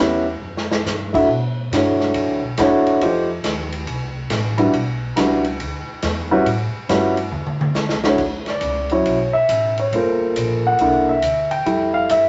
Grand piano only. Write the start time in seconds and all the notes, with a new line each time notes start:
0.00 B3 C#4 E4 G4 B4
1.13 A3 D4 E4 F#4 E5
1.73 A3 D4 E4 F#4 C#5
2.59 A3 D4 E4 F#4 C#5
3.02 A3 D#4 F4 G4 C5
4.58 G3 D4 E4 F#4 B4
5.16 G3 D4 E4 F#4 B4
6.31 G3 C#4 E4 F#4 B4
6.89 G3 C#4 E4 F#4 B4
8.05 A3 D4 E4 F#4 C#5
8.50 D5
8.91 F#3 C#4 E4 C#5
9.33 E5
9.80 C#5
9.94 A3 A#3 F4 C5
10.67 F#5
10.80 A3 A#3 D4 E4
11.09 E5
11.51 G5
11.66 G3 A3 E4
11.94 F5
12.11 E5